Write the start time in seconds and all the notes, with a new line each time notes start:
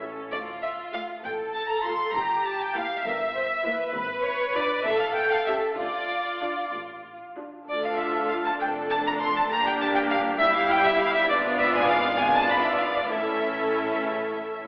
Already playing: A1 A2
0.01 C#4 A4
0.32 D2 F4 D5
0.63 E5
0.93 A3 F4 F5
1.24 A1 A2 A4 G5
1.53 A5
1.67 A#5
1.83 A3 F4 C6
2.13 G1 G2 G4 A#5
2.43 A5
2.60 G5
2.74 A#3 E4 F5
3.03 G1 G2 A#4 E5
3.34 C5
3.63 A#3 E4 B4
3.93 G#1 G#2 B4
4.22 C#5
4.54 D4 F4 D5
4.84 A1 A2 A4 E5
5.00 F5
5.14 G5
5.31 F5
5.46 C#4 G4 E5
5.77 D2 D3 F4 D5
6.41 D4 F4
6.72 A1 A2
7.37 D4 F4
7.67 D2 A3 D4 F4 A4 D5
7.83 F5
7.97 E5
8.29 F5
8.44 A5
8.60 F1 F2 A3 D4 A4 G5
8.90 A5
9.07 A#5
9.20 C6
9.36 A5
9.50 G1 G2 A#3 D4 G4 A#5
9.66 G5
9.81 A5
9.95 G5
10.10 F5
10.39 G3 E4 G4 E5
10.56 F5
10.70 G5
10.84 E5
11.00 F5
11.15 E5
11.29 G#1 G#2 B3 D4 F4 D5
11.58 E5
11.75 G#5
11.89 F5
12.18 B3 D4 F4 D5 G#5
12.34 A5
12.49 B5
12.63 E5
12.78 F5
12.94 D5
13.09 A1 A2 A3 C#4 E4 A4 E5
14.02 C#3
14.34 A2